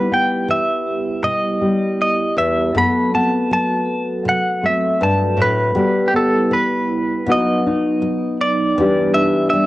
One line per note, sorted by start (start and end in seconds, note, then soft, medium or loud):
0.00 0.41 E2 medium
0.00 1.22 G3 medium
0.00 1.60 G3 medium
0.00 0.10 B3 medium
0.00 0.66 E4 soft
0.00 2.71 G4 medium
0.00 0.13 B4 medium
0.11 2.75 B3 soft
0.11 0.50 G5 medium
0.32 0.86 G4 medium
0.48 1.17 E3 medium
0.48 1.59 B3 medium
0.48 1.24 E5 medium
0.68 1.04 E4 soft
0.87 1.78 G4 medium
1.05 1.41 E4 soft
1.23 1.91 B2 medium
1.23 2.74 G3 medium
1.23 2.00 D#5 medium
1.42 2.15 E4 soft
1.60 2.75 G3 medium
1.60 1.96 B3 medium
1.79 2.33 G4 medium
1.98 2.81 B3 soft
2.02 2.38 D#5 medium
2.16 2.52 E4 soft
2.37 2.74 E2 medium
2.37 2.77 E5 medium
2.54 2.81 E4 soft
2.73 3.42 F#2 medium
2.73 4.22 F#3 medium
2.73 4.62 A3 medium
2.73 3.13 B3 medium
2.73 5.72 A4 medium
2.78 3.15 B5 medium
2.92 3.65 F#4 medium
3.10 3.49 C4 medium
3.15 5.74 B3 soft
3.15 3.52 A5 medium
3.28 3.84 A4 medium
3.51 4.18 F#3 medium
3.51 4.28 A5 medium
3.66 4.04 F#4 soft
3.86 4.80 A4 medium
4.05 4.42 F#4 medium
4.23 4.93 C3 medium
4.23 5.75 F#3 medium
4.29 4.66 F#5 medium
4.62 5.71 A3 medium
4.62 5.00 C4 medium
4.66 5.03 E5 medium
4.81 5.36 A4 medium
5.01 5.38 G2 medium
5.01 5.40 A5 medium
5.18 5.54 F#4 medium
5.37 5.75 A2 medium
5.37 5.83 A4 medium
5.42 6.10 B4 medium
5.75 6.43 B2 medium
5.75 6.11 G3 medium
5.75 7.26 G3 medium
5.75 6.12 B3 medium
5.75 7.22 G4 medium
6.08 6.14 G4 medium
6.12 6.48 G3 medium
6.12 7.26 B3 medium
6.16 6.53 A4 medium
6.31 6.87 E4 medium
6.49 7.19 E3 medium
6.49 7.25 G3 medium
6.53 7.30 B4 medium
6.69 7.05 B3 soft
6.88 7.34 E4 medium
7.06 7.33 B3 medium
7.25 7.94 B2 medium
7.25 7.62 F#3 medium
7.25 8.73 B3 medium
7.25 7.65 D#4 medium
7.25 8.74 F#4 medium
7.32 8.38 D#5 medium
7.43 8.17 B3 soft
7.63 7.99 F#3 medium
7.63 8.74 D#4 medium
7.81 8.36 D#4 medium
8.00 8.84 F#3 medium
8.00 8.69 F#3 medium
8.18 8.55 B3 soft
8.37 8.83 D#4 medium
8.37 9.14 D5 medium
8.56 8.83 B3 soft
8.75 9.45 E2 medium
8.75 9.50 G3 medium
8.75 9.11 D4 medium
8.79 9.53 E3 medium
8.79 9.52 G3 medium
8.79 9.14 D4 medium
8.79 9.66 G4 medium
8.94 9.31 B3 medium
9.13 9.66 D4 medium
9.13 9.49 E5 medium
9.32 9.66 B3 soft
9.50 9.66 E3 medium
9.50 9.66 G3 medium
9.50 9.66 E5 medium